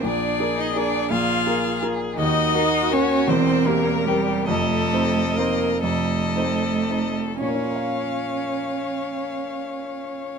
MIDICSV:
0, 0, Header, 1, 5, 480
1, 0, Start_track
1, 0, Key_signature, -5, "minor"
1, 0, Tempo, 719424
1, 25, Time_signature, 6, 3, 24, 8
1, 1944, Tempo, 756620
1, 2424, Tempo, 810811
1, 2904, Tempo, 882353
1, 3384, Tempo, 995025
1, 3864, Tempo, 1061947
1, 4344, Tempo, 1006711
1, 5758, End_track
2, 0, Start_track
2, 0, Title_t, "Violin"
2, 0, Program_c, 0, 40
2, 43, Note_on_c, 0, 74, 64
2, 403, Note_on_c, 0, 75, 58
2, 413, Note_off_c, 0, 74, 0
2, 514, Note_on_c, 0, 74, 67
2, 524, Note_off_c, 0, 75, 0
2, 737, Note_off_c, 0, 74, 0
2, 741, Note_on_c, 0, 77, 65
2, 1209, Note_off_c, 0, 77, 0
2, 1463, Note_on_c, 0, 75, 80
2, 1955, Note_on_c, 0, 73, 76
2, 1964, Note_off_c, 0, 75, 0
2, 2181, Note_on_c, 0, 72, 72
2, 2190, Note_off_c, 0, 73, 0
2, 2428, Note_on_c, 0, 70, 73
2, 2437, Note_off_c, 0, 72, 0
2, 2661, Note_on_c, 0, 67, 64
2, 2670, Note_off_c, 0, 70, 0
2, 2900, Note_off_c, 0, 67, 0
2, 2903, Note_on_c, 0, 69, 74
2, 3383, Note_on_c, 0, 70, 72
2, 3390, Note_off_c, 0, 69, 0
2, 3612, Note_off_c, 0, 70, 0
2, 3615, Note_on_c, 0, 69, 65
2, 4329, Note_off_c, 0, 69, 0
2, 4347, Note_on_c, 0, 73, 48
2, 5758, Note_off_c, 0, 73, 0
2, 5758, End_track
3, 0, Start_track
3, 0, Title_t, "Violin"
3, 0, Program_c, 1, 40
3, 35, Note_on_c, 1, 68, 56
3, 735, Note_off_c, 1, 68, 0
3, 754, Note_on_c, 1, 68, 54
3, 1451, Note_off_c, 1, 68, 0
3, 1473, Note_on_c, 1, 66, 61
3, 2188, Note_on_c, 1, 70, 71
3, 2198, Note_off_c, 1, 66, 0
3, 2903, Note_off_c, 1, 70, 0
3, 2906, Note_on_c, 1, 75, 63
3, 3605, Note_off_c, 1, 75, 0
3, 3617, Note_on_c, 1, 75, 60
3, 4212, Note_off_c, 1, 75, 0
3, 4338, Note_on_c, 1, 77, 51
3, 5758, Note_off_c, 1, 77, 0
3, 5758, End_track
4, 0, Start_track
4, 0, Title_t, "Grand piano"
4, 0, Program_c, 2, 0
4, 0, Control_c, 2, 64, 127
4, 20, Note_on_c, 2, 46, 49
4, 22, Note_on_c, 2, 34, 51
4, 37, Control_c, 2, 64, 0
4, 130, Control_c, 2, 64, 127
4, 261, Note_off_c, 2, 46, 0
4, 262, Note_off_c, 2, 34, 0
4, 266, Note_on_c, 2, 58, 41
4, 267, Note_on_c, 2, 68, 43
4, 270, Note_on_c, 2, 70, 45
4, 483, Note_off_c, 2, 58, 0
4, 484, Note_off_c, 2, 68, 0
4, 485, Note_off_c, 2, 70, 0
4, 500, Note_on_c, 2, 58, 41
4, 506, Note_on_c, 2, 68, 43
4, 511, Note_on_c, 2, 70, 46
4, 716, Note_off_c, 2, 58, 0
4, 719, Note_off_c, 2, 68, 0
4, 722, Note_off_c, 2, 70, 0
4, 735, Note_on_c, 2, 46, 54
4, 736, Note_on_c, 2, 34, 49
4, 969, Note_off_c, 2, 46, 0
4, 970, Note_off_c, 2, 34, 0
4, 975, Note_on_c, 2, 58, 44
4, 979, Note_on_c, 2, 68, 43
4, 983, Note_on_c, 2, 70, 51
4, 1193, Note_off_c, 2, 58, 0
4, 1195, Note_off_c, 2, 68, 0
4, 1198, Note_off_c, 2, 70, 0
4, 1216, Note_on_c, 2, 58, 43
4, 1219, Note_on_c, 2, 68, 44
4, 1219, Note_on_c, 2, 70, 48
4, 1434, Note_off_c, 2, 58, 0
4, 1436, Note_off_c, 2, 68, 0
4, 1436, Note_off_c, 2, 70, 0
4, 1450, Note_on_c, 2, 51, 61
4, 1456, Note_on_c, 2, 39, 63
4, 1472, Control_c, 2, 64, 0
4, 1595, Control_c, 2, 64, 127
4, 1689, Note_off_c, 2, 51, 0
4, 1692, Note_off_c, 2, 39, 0
4, 1695, Note_on_c, 2, 58, 48
4, 1698, Note_on_c, 2, 66, 47
4, 1700, Note_on_c, 2, 70, 54
4, 1917, Note_off_c, 2, 58, 0
4, 1919, Note_off_c, 2, 66, 0
4, 1920, Note_off_c, 2, 70, 0
4, 1935, Note_on_c, 2, 58, 51
4, 1935, Note_on_c, 2, 66, 49
4, 1939, Note_on_c, 2, 70, 54
4, 2153, Note_off_c, 2, 58, 0
4, 2153, Note_off_c, 2, 66, 0
4, 2155, Note_off_c, 2, 70, 0
4, 2173, Note_on_c, 2, 28, 63
4, 2174, Note_on_c, 2, 40, 69
4, 2193, Control_c, 2, 64, 0
4, 2289, Control_c, 2, 64, 127
4, 2413, Note_off_c, 2, 28, 0
4, 2414, Note_off_c, 2, 40, 0
4, 2417, Note_on_c, 2, 60, 52
4, 2424, Note_on_c, 2, 67, 51
4, 2424, Note_on_c, 2, 70, 53
4, 2633, Note_off_c, 2, 60, 0
4, 2636, Note_off_c, 2, 67, 0
4, 2636, Note_off_c, 2, 70, 0
4, 2662, Note_on_c, 2, 60, 44
4, 2662, Note_on_c, 2, 67, 47
4, 2662, Note_on_c, 2, 70, 48
4, 2882, Note_off_c, 2, 60, 0
4, 2882, Note_off_c, 2, 67, 0
4, 2882, Note_off_c, 2, 70, 0
4, 2902, Note_on_c, 2, 29, 57
4, 2905, Note_on_c, 2, 41, 68
4, 2916, Control_c, 2, 64, 0
4, 3012, Control_c, 2, 64, 127
4, 3130, Note_off_c, 2, 29, 0
4, 3132, Note_off_c, 2, 41, 0
4, 3150, Note_on_c, 2, 60, 46
4, 3153, Note_on_c, 2, 63, 45
4, 3153, Note_on_c, 2, 72, 49
4, 3368, Note_off_c, 2, 60, 0
4, 3370, Note_off_c, 2, 63, 0
4, 3370, Note_off_c, 2, 72, 0
4, 3391, Note_on_c, 2, 60, 43
4, 3393, Note_on_c, 2, 63, 42
4, 3396, Note_on_c, 2, 72, 50
4, 3602, Note_off_c, 2, 60, 0
4, 3603, Note_off_c, 2, 63, 0
4, 3604, Note_off_c, 2, 72, 0
4, 3609, Note_on_c, 2, 29, 50
4, 3611, Note_on_c, 2, 41, 48
4, 3853, Note_off_c, 2, 29, 0
4, 3854, Note_off_c, 2, 41, 0
4, 3865, Note_on_c, 2, 60, 36
4, 3869, Note_on_c, 2, 72, 44
4, 3871, Note_on_c, 2, 63, 39
4, 4091, Note_off_c, 2, 60, 0
4, 4094, Note_off_c, 2, 63, 0
4, 4094, Note_off_c, 2, 72, 0
4, 4106, Note_on_c, 2, 60, 33
4, 4108, Note_on_c, 2, 63, 34
4, 4110, Note_on_c, 2, 72, 38
4, 4325, Note_off_c, 2, 60, 0
4, 4326, Note_off_c, 2, 63, 0
4, 4327, Note_off_c, 2, 72, 0
4, 4337, Note_on_c, 2, 46, 41
4, 4357, Control_c, 2, 64, 0
4, 4370, Note_on_c, 2, 58, 41
4, 4406, Note_on_c, 2, 61, 40
4, 4437, Note_on_c, 2, 65, 40
4, 4453, Control_c, 2, 64, 127
4, 4471, Note_on_c, 2, 70, 40
4, 4505, Note_on_c, 2, 77, 41
4, 5758, Note_off_c, 2, 46, 0
4, 5758, Note_off_c, 2, 58, 0
4, 5758, Note_off_c, 2, 61, 0
4, 5758, Note_off_c, 2, 65, 0
4, 5758, Note_off_c, 2, 70, 0
4, 5758, Note_off_c, 2, 77, 0
4, 5758, End_track
5, 0, Start_track
5, 0, Title_t, "Cello"
5, 0, Program_c, 3, 42
5, 10, Note_on_c, 3, 62, 68
5, 384, Note_off_c, 3, 62, 0
5, 389, Note_on_c, 3, 63, 61
5, 491, Note_off_c, 3, 63, 0
5, 495, Note_on_c, 3, 62, 72
5, 741, Note_on_c, 3, 65, 78
5, 751, Note_off_c, 3, 62, 0
5, 1219, Note_off_c, 3, 65, 0
5, 1448, Note_on_c, 3, 63, 87
5, 1949, Note_on_c, 3, 61, 86
5, 1958, Note_off_c, 3, 63, 0
5, 2177, Note_on_c, 3, 60, 90
5, 2187, Note_off_c, 3, 61, 0
5, 2418, Note_on_c, 3, 58, 77
5, 2427, Note_off_c, 3, 60, 0
5, 2654, Note_on_c, 3, 55, 84
5, 2663, Note_off_c, 3, 58, 0
5, 2889, Note_on_c, 3, 57, 82
5, 2898, Note_off_c, 3, 55, 0
5, 3384, Note_on_c, 3, 58, 77
5, 3391, Note_off_c, 3, 57, 0
5, 3612, Note_off_c, 3, 58, 0
5, 3615, Note_on_c, 3, 57, 79
5, 4329, Note_off_c, 3, 57, 0
5, 4345, Note_on_c, 3, 61, 54
5, 5758, Note_off_c, 3, 61, 0
5, 5758, End_track
0, 0, End_of_file